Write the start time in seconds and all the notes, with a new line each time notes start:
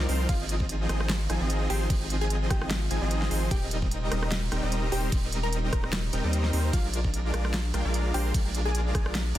Already playing: D#3 A#3 F4 D5
0.09 C2 F3 C4 D#4 A#4 C5, open hi-hat
0.29 G#1 C3 G#3 F4 F5, kick, closed hi-hat, crash
0.49 closed hi-hat
0.60 kick
0.69 closed hi-hat
0.89 G#1 F3 C4 D#4 G#4 D#5, cross-stick, closed hi-hat
1.00 cross-stick
1.10 snare, closed hi-hat, crash
1.30 G#1 F3 C4 D#4 G#4 G#5, cross-stick, closed hi-hat
1.41 G#1 F3 C4 D#4 G#4 D#5
1.50 closed hi-hat
1.70 G#1 F3 C4 D#4 G4 G#4 C5 G5, open hi-hat
1.90 G#1 F3 C4 D#4 G#4 D#5, kick, closed hi-hat, crash
2.10 closed hi-hat
2.21 G#4 G#5
2.30 closed hi-hat
2.50 G#1 F3 C4 G4 G#4 D#5 G5, kick, cross-stick, closed hi-hat
2.62 cross-stick
2.71 snare, closed hi-hat, crash
2.91 G#1 F3 C4 D#4 G#4 G#5, closed hi-hat
3.02 G#1 F3 C4 D#4 G#4 D#5
3.11 closed hi-hat
3.22 snare
3.31 G#1 F3 C4 D#4 G#4 C5, open hi-hat
3.51 D#1 G3 D#4 G4 G5, kick, closed hi-hat, crash
3.71 closed hi-hat
3.82 kick
3.91 closed hi-hat
4.11 D#1 G3 C4 D#4 A#4 D#5, cross-stick, closed hi-hat
4.23 cross-stick
4.32 snare, closed hi-hat, crash
4.52 D#1 G3 C4 D#4 A#4 G5, cross-stick, closed hi-hat
4.63 D#1 G3 C4 D#4 A#4 D#5
4.72 closed hi-hat
4.92 D#1 G3 C4 D#4 G4 A#4 C5 G5, open hi-hat
5.12 D#1 G3 C4 D#4 D#5, kick, closed hi-hat, crash
5.32 closed hi-hat
5.43 A#4 A#5
5.53 closed hi-hat
5.73 D#1 A#4 A#5, kick, cross-stick, closed hi-hat
5.84 cross-stick
5.93 snare, closed hi-hat, crash
6.13 D#1 G3 C4 D#4 A#4 G5, closed hi-hat
6.24 D#2 G3 C4 D#4 A#4 D#5
6.33 closed hi-hat
6.44 snare
6.53 D#2 G3 C4 D#4 A#4 C5, open hi-hat
6.73 A#1 A#2 G#3 D4 F4 A#4 D5 F5, kick, closed hi-hat, crash
6.94 closed hi-hat
7.05 kick
7.14 closed hi-hat
7.34 A#1 G#3 D4 F4 A#4 D5, cross-stick, closed hi-hat
7.45 cross-stick
7.54 snare, closed hi-hat, crash
7.74 A#1 G#3 D4 F4 A#4 G5, cross-stick, closed hi-hat
7.85 A#1 G#3 D4 F4 A#4 D5
7.94 closed hi-hat
8.14 A#1 G#3 D4 F4 G4 A#4 C5 G5, open hi-hat
8.34 A#1 F4, kick, closed hi-hat, crash
8.55 closed hi-hat
8.65 G#4 G#5
8.75 closed hi-hat
8.95 A#1 D4 F4 G#4 G#5, kick, cross-stick, closed hi-hat
9.06 cross-stick
9.15 snare, closed hi-hat, crash